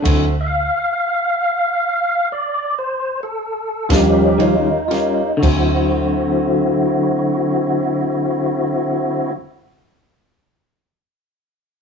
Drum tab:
CC |x-----------|x-----------|
RD |x--------xxx|------------|
SD |---------o-o|------------|
BD |o--------o--|o-----------|